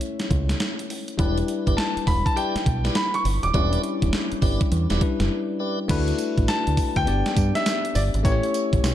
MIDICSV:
0, 0, Header, 1, 7, 480
1, 0, Start_track
1, 0, Tempo, 588235
1, 972, Time_signature, 4, 2, 24, 8
1, 7299, End_track
2, 0, Start_track
2, 0, Title_t, "Grand piano"
2, 0, Program_c, 0, 0
2, 1443, Note_on_c, 0, 81, 88
2, 1688, Note_on_c, 0, 83, 96
2, 1695, Note_off_c, 0, 81, 0
2, 1832, Note_off_c, 0, 83, 0
2, 1842, Note_on_c, 0, 81, 88
2, 1930, Note_on_c, 0, 79, 90
2, 1933, Note_off_c, 0, 81, 0
2, 2378, Note_off_c, 0, 79, 0
2, 2412, Note_on_c, 0, 83, 101
2, 2564, Note_on_c, 0, 85, 103
2, 2569, Note_off_c, 0, 83, 0
2, 2618, Note_off_c, 0, 85, 0
2, 2799, Note_on_c, 0, 86, 96
2, 4296, Note_off_c, 0, 86, 0
2, 5290, Note_on_c, 0, 81, 106
2, 5656, Note_off_c, 0, 81, 0
2, 5684, Note_on_c, 0, 79, 116
2, 6131, Note_off_c, 0, 79, 0
2, 6162, Note_on_c, 0, 76, 107
2, 6488, Note_on_c, 0, 74, 88
2, 6501, Note_off_c, 0, 76, 0
2, 6543, Note_off_c, 0, 74, 0
2, 6730, Note_on_c, 0, 73, 87
2, 7299, Note_off_c, 0, 73, 0
2, 7299, End_track
3, 0, Start_track
3, 0, Title_t, "Tonewheel organ"
3, 0, Program_c, 1, 16
3, 966, Note_on_c, 1, 64, 105
3, 969, Note_on_c, 1, 67, 94
3, 969, Note_on_c, 1, 71, 92
3, 970, Note_on_c, 1, 74, 114
3, 1126, Note_off_c, 1, 64, 0
3, 1128, Note_off_c, 1, 67, 0
3, 1128, Note_off_c, 1, 71, 0
3, 1128, Note_off_c, 1, 74, 0
3, 1358, Note_on_c, 1, 64, 71
3, 1361, Note_on_c, 1, 67, 71
3, 1363, Note_on_c, 1, 71, 69
3, 1365, Note_on_c, 1, 74, 83
3, 1457, Note_off_c, 1, 64, 0
3, 1459, Note_off_c, 1, 67, 0
3, 1460, Note_off_c, 1, 71, 0
3, 1460, Note_off_c, 1, 74, 0
3, 1924, Note_on_c, 1, 64, 89
3, 1927, Note_on_c, 1, 67, 77
3, 1927, Note_on_c, 1, 71, 84
3, 1929, Note_on_c, 1, 74, 94
3, 2085, Note_off_c, 1, 64, 0
3, 2087, Note_off_c, 1, 67, 0
3, 2087, Note_off_c, 1, 71, 0
3, 2088, Note_off_c, 1, 74, 0
3, 2319, Note_on_c, 1, 64, 72
3, 2319, Note_on_c, 1, 67, 71
3, 2320, Note_on_c, 1, 71, 75
3, 2324, Note_on_c, 1, 74, 85
3, 2417, Note_off_c, 1, 64, 0
3, 2418, Note_off_c, 1, 67, 0
3, 2418, Note_off_c, 1, 71, 0
3, 2420, Note_off_c, 1, 74, 0
3, 2885, Note_on_c, 1, 67, 90
3, 2886, Note_on_c, 1, 64, 101
3, 2887, Note_on_c, 1, 71, 92
3, 2890, Note_on_c, 1, 74, 119
3, 3115, Note_off_c, 1, 64, 0
3, 3115, Note_off_c, 1, 67, 0
3, 3115, Note_off_c, 1, 71, 0
3, 3117, Note_off_c, 1, 74, 0
3, 3604, Note_on_c, 1, 64, 78
3, 3606, Note_on_c, 1, 67, 70
3, 3607, Note_on_c, 1, 71, 68
3, 3609, Note_on_c, 1, 74, 84
3, 3765, Note_off_c, 1, 64, 0
3, 3766, Note_off_c, 1, 67, 0
3, 3767, Note_off_c, 1, 71, 0
3, 3768, Note_off_c, 1, 74, 0
3, 3996, Note_on_c, 1, 64, 79
3, 3998, Note_on_c, 1, 67, 74
3, 3999, Note_on_c, 1, 71, 72
3, 4001, Note_on_c, 1, 74, 89
3, 4096, Note_off_c, 1, 64, 0
3, 4097, Note_off_c, 1, 67, 0
3, 4098, Note_off_c, 1, 71, 0
3, 4099, Note_off_c, 1, 74, 0
3, 4565, Note_on_c, 1, 64, 74
3, 4569, Note_on_c, 1, 67, 69
3, 4570, Note_on_c, 1, 71, 72
3, 4571, Note_on_c, 1, 74, 83
3, 4726, Note_off_c, 1, 64, 0
3, 4728, Note_off_c, 1, 67, 0
3, 4729, Note_off_c, 1, 71, 0
3, 4729, Note_off_c, 1, 74, 0
3, 7299, End_track
4, 0, Start_track
4, 0, Title_t, "Tine electric piano"
4, 0, Program_c, 2, 4
4, 0, Control_c, 2, 64, 127
4, 0, Note_on_c, 2, 57, 72
4, 0, Note_on_c, 2, 61, 60
4, 0, Note_on_c, 2, 64, 60
4, 0, Note_on_c, 2, 73, 74
4, 935, Note_off_c, 2, 57, 0
4, 938, Note_off_c, 2, 61, 0
4, 941, Note_off_c, 2, 64, 0
4, 944, Note_off_c, 2, 73, 0
4, 958, Note_on_c, 2, 55, 80
4, 965, Note_on_c, 2, 62, 78
4, 972, Note_on_c, 2, 64, 79
4, 977, Note_on_c, 2, 71, 89
4, 981, Control_c, 2, 64, 0
4, 1139, Control_c, 2, 64, 127
4, 2852, Note_off_c, 2, 55, 0
4, 2856, Note_off_c, 2, 62, 0
4, 2859, Note_off_c, 2, 64, 0
4, 2862, Note_off_c, 2, 71, 0
4, 2885, Note_on_c, 2, 55, 68
4, 2892, Note_on_c, 2, 62, 62
4, 2899, Note_on_c, 2, 64, 61
4, 2905, Note_on_c, 2, 61, 75
4, 4065, Note_off_c, 2, 55, 0
4, 4068, Note_off_c, 2, 62, 0
4, 4071, Note_off_c, 2, 64, 0
4, 4074, Note_off_c, 2, 61, 0
4, 4088, Note_on_c, 2, 55, 62
4, 4092, Note_on_c, 2, 62, 55
4, 4095, Note_on_c, 2, 64, 56
4, 4097, Note_on_c, 2, 71, 66
4, 4796, Note_off_c, 2, 62, 0
4, 4799, Note_off_c, 2, 64, 0
4, 4799, Note_on_c, 2, 57, 85
4, 4806, Note_on_c, 2, 62, 79
4, 4809, Note_on_c, 2, 64, 80
4, 4810, Note_off_c, 2, 55, 0
4, 4810, Note_off_c, 2, 71, 0
4, 4813, Note_on_c, 2, 66, 76
4, 4819, Note_on_c, 2, 71, 100
4, 4824, Control_c, 2, 64, 0
4, 4959, Control_c, 2, 64, 127
4, 5746, Note_off_c, 2, 57, 0
4, 5750, Note_off_c, 2, 62, 0
4, 5751, Note_off_c, 2, 64, 0
4, 5753, Note_off_c, 2, 66, 0
4, 5756, Note_off_c, 2, 71, 0
4, 5758, Note_on_c, 2, 59, 74
4, 5763, Note_on_c, 2, 62, 63
4, 5771, Note_on_c, 2, 67, 64
4, 5778, Note_on_c, 2, 74, 80
4, 5784, Control_c, 2, 64, 0
4, 5904, Control_c, 2, 64, 127
4, 6705, Note_off_c, 2, 59, 0
4, 6708, Note_off_c, 2, 62, 0
4, 6712, Note_off_c, 2, 67, 0
4, 6715, Note_on_c, 2, 57, 71
4, 6716, Note_off_c, 2, 74, 0
4, 6720, Note_on_c, 2, 61, 71
4, 6725, Note_on_c, 2, 64, 68
4, 6732, Note_on_c, 2, 67, 69
4, 6736, Note_on_c, 2, 71, 61
4, 6742, Control_c, 2, 64, 0
4, 6789, Note_on_c, 2, 73, 85
4, 6801, Note_off_c, 2, 71, 0
4, 6892, Control_c, 2, 64, 127
4, 7299, Note_off_c, 2, 57, 0
4, 7299, Note_off_c, 2, 61, 0
4, 7299, Note_off_c, 2, 64, 0
4, 7299, Note_off_c, 2, 67, 0
4, 7299, Note_off_c, 2, 73, 0
4, 7299, End_track
5, 0, Start_track
5, 0, Title_t, "Fingered electric bass"
5, 0, Program_c, 3, 33
5, 251, Note_on_c, 3, 37, 102
5, 430, Note_off_c, 3, 37, 0
5, 970, Note_on_c, 3, 28, 121
5, 1150, Note_off_c, 3, 28, 0
5, 1365, Note_on_c, 3, 31, 83
5, 1430, Note_off_c, 3, 31, 0
5, 1689, Note_on_c, 3, 28, 92
5, 1804, Note_off_c, 3, 28, 0
5, 2175, Note_on_c, 3, 35, 98
5, 2353, Note_off_c, 3, 35, 0
5, 2651, Note_on_c, 3, 31, 88
5, 2765, Note_off_c, 3, 31, 0
5, 2801, Note_on_c, 3, 27, 86
5, 2868, Note_off_c, 3, 27, 0
5, 2891, Note_on_c, 3, 28, 120
5, 3071, Note_off_c, 3, 28, 0
5, 3283, Note_on_c, 3, 28, 84
5, 3349, Note_off_c, 3, 28, 0
5, 3609, Note_on_c, 3, 31, 91
5, 3724, Note_off_c, 3, 31, 0
5, 3850, Note_on_c, 3, 40, 96
5, 3964, Note_off_c, 3, 40, 0
5, 4003, Note_on_c, 3, 28, 88
5, 4068, Note_off_c, 3, 28, 0
5, 4243, Note_on_c, 3, 30, 91
5, 4309, Note_off_c, 3, 30, 0
5, 4811, Note_on_c, 3, 38, 103
5, 4990, Note_off_c, 3, 38, 0
5, 5204, Note_on_c, 3, 33, 84
5, 5270, Note_off_c, 3, 33, 0
5, 5446, Note_on_c, 3, 38, 77
5, 5510, Note_off_c, 3, 38, 0
5, 5681, Note_on_c, 3, 38, 97
5, 5747, Note_off_c, 3, 38, 0
5, 5775, Note_on_c, 3, 31, 96
5, 5888, Note_off_c, 3, 31, 0
5, 6012, Note_on_c, 3, 43, 115
5, 6126, Note_off_c, 3, 43, 0
5, 6492, Note_on_c, 3, 31, 94
5, 6606, Note_off_c, 3, 31, 0
5, 6644, Note_on_c, 3, 32, 89
5, 6709, Note_off_c, 3, 32, 0
5, 6733, Note_on_c, 3, 33, 113
5, 6846, Note_off_c, 3, 33, 0
5, 7125, Note_on_c, 3, 33, 87
5, 7190, Note_off_c, 3, 33, 0
5, 7209, Note_on_c, 3, 35, 95
5, 7299, Note_off_c, 3, 35, 0
5, 7299, End_track
6, 0, Start_track
6, 0, Title_t, "Muted fingered electric bass strokes"
6, 1606, Note_on_c, 9, 29, 45
6, 1687, Note_off_c, 9, 29, 0
6, 2084, Note_on_c, 9, 29, 46
6, 2166, Note_off_c, 9, 29, 0
6, 3527, Note_on_c, 9, 29, 47
6, 3608, Note_off_c, 9, 29, 0
6, 7299, End_track
7, 0, Start_track
7, 0, Title_t, "Drums"
7, 8, Note_on_c, 9, 42, 73
7, 90, Note_off_c, 9, 42, 0
7, 159, Note_on_c, 9, 42, 58
7, 161, Note_on_c, 9, 38, 75
7, 241, Note_off_c, 9, 42, 0
7, 243, Note_off_c, 9, 38, 0
7, 250, Note_on_c, 9, 36, 92
7, 252, Note_on_c, 9, 42, 83
7, 331, Note_off_c, 9, 36, 0
7, 334, Note_off_c, 9, 42, 0
7, 403, Note_on_c, 9, 38, 70
7, 404, Note_on_c, 9, 42, 59
7, 484, Note_off_c, 9, 38, 0
7, 485, Note_off_c, 9, 42, 0
7, 490, Note_on_c, 9, 42, 78
7, 492, Note_on_c, 9, 38, 107
7, 572, Note_off_c, 9, 42, 0
7, 573, Note_off_c, 9, 38, 0
7, 647, Note_on_c, 9, 42, 52
7, 728, Note_off_c, 9, 42, 0
7, 736, Note_on_c, 9, 46, 73
7, 818, Note_off_c, 9, 46, 0
7, 882, Note_on_c, 9, 42, 62
7, 963, Note_off_c, 9, 42, 0
7, 970, Note_on_c, 9, 36, 121
7, 970, Note_on_c, 9, 42, 80
7, 1051, Note_off_c, 9, 36, 0
7, 1052, Note_off_c, 9, 42, 0
7, 1122, Note_on_c, 9, 42, 60
7, 1204, Note_off_c, 9, 42, 0
7, 1211, Note_on_c, 9, 42, 86
7, 1292, Note_off_c, 9, 42, 0
7, 1363, Note_on_c, 9, 36, 88
7, 1365, Note_on_c, 9, 42, 53
7, 1444, Note_off_c, 9, 36, 0
7, 1447, Note_off_c, 9, 42, 0
7, 1454, Note_on_c, 9, 38, 121
7, 1454, Note_on_c, 9, 42, 62
7, 1536, Note_off_c, 9, 38, 0
7, 1536, Note_off_c, 9, 42, 0
7, 1609, Note_on_c, 9, 42, 52
7, 1689, Note_on_c, 9, 36, 91
7, 1690, Note_off_c, 9, 42, 0
7, 1694, Note_on_c, 9, 46, 68
7, 1771, Note_off_c, 9, 36, 0
7, 1776, Note_off_c, 9, 46, 0
7, 1844, Note_on_c, 9, 36, 94
7, 1850, Note_on_c, 9, 42, 52
7, 1925, Note_off_c, 9, 36, 0
7, 1931, Note_off_c, 9, 42, 0
7, 1935, Note_on_c, 9, 42, 74
7, 2016, Note_off_c, 9, 42, 0
7, 2086, Note_on_c, 9, 42, 55
7, 2088, Note_on_c, 9, 38, 71
7, 2168, Note_off_c, 9, 42, 0
7, 2170, Note_off_c, 9, 38, 0
7, 2172, Note_on_c, 9, 36, 94
7, 2176, Note_on_c, 9, 42, 77
7, 2254, Note_off_c, 9, 36, 0
7, 2258, Note_off_c, 9, 42, 0
7, 2324, Note_on_c, 9, 38, 67
7, 2325, Note_on_c, 9, 42, 57
7, 2406, Note_off_c, 9, 38, 0
7, 2407, Note_off_c, 9, 42, 0
7, 2408, Note_on_c, 9, 42, 77
7, 2410, Note_on_c, 9, 38, 114
7, 2490, Note_off_c, 9, 42, 0
7, 2492, Note_off_c, 9, 38, 0
7, 2564, Note_on_c, 9, 42, 55
7, 2645, Note_off_c, 9, 42, 0
7, 2654, Note_on_c, 9, 46, 84
7, 2735, Note_off_c, 9, 46, 0
7, 2801, Note_on_c, 9, 42, 69
7, 2882, Note_off_c, 9, 42, 0
7, 2890, Note_on_c, 9, 36, 117
7, 2891, Note_on_c, 9, 42, 75
7, 2972, Note_off_c, 9, 36, 0
7, 2972, Note_off_c, 9, 42, 0
7, 3041, Note_on_c, 9, 42, 66
7, 3123, Note_off_c, 9, 42, 0
7, 3130, Note_on_c, 9, 42, 89
7, 3211, Note_off_c, 9, 42, 0
7, 3282, Note_on_c, 9, 36, 82
7, 3283, Note_on_c, 9, 42, 53
7, 3364, Note_off_c, 9, 36, 0
7, 3364, Note_off_c, 9, 42, 0
7, 3369, Note_on_c, 9, 38, 114
7, 3370, Note_on_c, 9, 42, 67
7, 3451, Note_off_c, 9, 38, 0
7, 3451, Note_off_c, 9, 42, 0
7, 3522, Note_on_c, 9, 42, 52
7, 3604, Note_off_c, 9, 42, 0
7, 3608, Note_on_c, 9, 36, 88
7, 3608, Note_on_c, 9, 46, 71
7, 3689, Note_off_c, 9, 46, 0
7, 3690, Note_off_c, 9, 36, 0
7, 3761, Note_on_c, 9, 36, 98
7, 3762, Note_on_c, 9, 42, 52
7, 3842, Note_off_c, 9, 36, 0
7, 3844, Note_off_c, 9, 42, 0
7, 3849, Note_on_c, 9, 42, 76
7, 3931, Note_off_c, 9, 42, 0
7, 3999, Note_on_c, 9, 42, 57
7, 4001, Note_on_c, 9, 38, 77
7, 4081, Note_off_c, 9, 42, 0
7, 4083, Note_off_c, 9, 38, 0
7, 4090, Note_on_c, 9, 36, 102
7, 4090, Note_on_c, 9, 42, 72
7, 4171, Note_off_c, 9, 36, 0
7, 4171, Note_off_c, 9, 42, 0
7, 4243, Note_on_c, 9, 38, 69
7, 4244, Note_on_c, 9, 42, 63
7, 4324, Note_off_c, 9, 38, 0
7, 4325, Note_off_c, 9, 42, 0
7, 4809, Note_on_c, 9, 54, 66
7, 4810, Note_on_c, 9, 36, 121
7, 4810, Note_on_c, 9, 42, 77
7, 4810, Note_on_c, 9, 49, 100
7, 4891, Note_off_c, 9, 42, 0
7, 4891, Note_off_c, 9, 49, 0
7, 4891, Note_off_c, 9, 54, 0
7, 4892, Note_off_c, 9, 36, 0
7, 4959, Note_on_c, 9, 42, 65
7, 5041, Note_off_c, 9, 42, 0
7, 5047, Note_on_c, 9, 42, 88
7, 5048, Note_on_c, 9, 54, 63
7, 5129, Note_off_c, 9, 42, 0
7, 5130, Note_off_c, 9, 54, 0
7, 5202, Note_on_c, 9, 36, 82
7, 5204, Note_on_c, 9, 42, 56
7, 5284, Note_off_c, 9, 36, 0
7, 5286, Note_off_c, 9, 42, 0
7, 5288, Note_on_c, 9, 54, 100
7, 5290, Note_on_c, 9, 38, 120
7, 5290, Note_on_c, 9, 42, 66
7, 5369, Note_off_c, 9, 54, 0
7, 5371, Note_off_c, 9, 38, 0
7, 5372, Note_off_c, 9, 42, 0
7, 5443, Note_on_c, 9, 42, 55
7, 5524, Note_off_c, 9, 42, 0
7, 5526, Note_on_c, 9, 54, 67
7, 5527, Note_on_c, 9, 36, 85
7, 5527, Note_on_c, 9, 46, 77
7, 5608, Note_off_c, 9, 46, 0
7, 5608, Note_off_c, 9, 54, 0
7, 5609, Note_off_c, 9, 36, 0
7, 5681, Note_on_c, 9, 36, 100
7, 5681, Note_on_c, 9, 42, 59
7, 5763, Note_off_c, 9, 36, 0
7, 5763, Note_off_c, 9, 42, 0
7, 5771, Note_on_c, 9, 42, 77
7, 5853, Note_off_c, 9, 42, 0
7, 5923, Note_on_c, 9, 42, 62
7, 5925, Note_on_c, 9, 38, 72
7, 6005, Note_off_c, 9, 42, 0
7, 6006, Note_off_c, 9, 38, 0
7, 6010, Note_on_c, 9, 54, 69
7, 6011, Note_on_c, 9, 36, 104
7, 6012, Note_on_c, 9, 42, 77
7, 6091, Note_off_c, 9, 54, 0
7, 6092, Note_off_c, 9, 36, 0
7, 6093, Note_off_c, 9, 42, 0
7, 6163, Note_on_c, 9, 38, 68
7, 6164, Note_on_c, 9, 42, 58
7, 6245, Note_off_c, 9, 38, 0
7, 6246, Note_off_c, 9, 42, 0
7, 6250, Note_on_c, 9, 54, 84
7, 6251, Note_on_c, 9, 42, 82
7, 6253, Note_on_c, 9, 38, 121
7, 6331, Note_off_c, 9, 54, 0
7, 6332, Note_off_c, 9, 42, 0
7, 6334, Note_off_c, 9, 38, 0
7, 6404, Note_on_c, 9, 42, 58
7, 6486, Note_off_c, 9, 42, 0
7, 6488, Note_on_c, 9, 54, 69
7, 6491, Note_on_c, 9, 46, 82
7, 6570, Note_off_c, 9, 54, 0
7, 6573, Note_off_c, 9, 46, 0
7, 6644, Note_on_c, 9, 42, 65
7, 6725, Note_off_c, 9, 42, 0
7, 6731, Note_on_c, 9, 36, 118
7, 6733, Note_on_c, 9, 42, 81
7, 6733, Note_on_c, 9, 54, 64
7, 6812, Note_off_c, 9, 36, 0
7, 6815, Note_off_c, 9, 42, 0
7, 6815, Note_off_c, 9, 54, 0
7, 6882, Note_on_c, 9, 42, 63
7, 6964, Note_off_c, 9, 42, 0
7, 6971, Note_on_c, 9, 42, 87
7, 6972, Note_on_c, 9, 54, 66
7, 7053, Note_off_c, 9, 42, 0
7, 7054, Note_off_c, 9, 54, 0
7, 7122, Note_on_c, 9, 36, 84
7, 7125, Note_on_c, 9, 42, 56
7, 7204, Note_off_c, 9, 36, 0
7, 7207, Note_off_c, 9, 42, 0
7, 7212, Note_on_c, 9, 54, 98
7, 7214, Note_on_c, 9, 38, 117
7, 7214, Note_on_c, 9, 42, 68
7, 7293, Note_off_c, 9, 54, 0
7, 7295, Note_off_c, 9, 38, 0
7, 7296, Note_off_c, 9, 42, 0
7, 7299, End_track
0, 0, End_of_file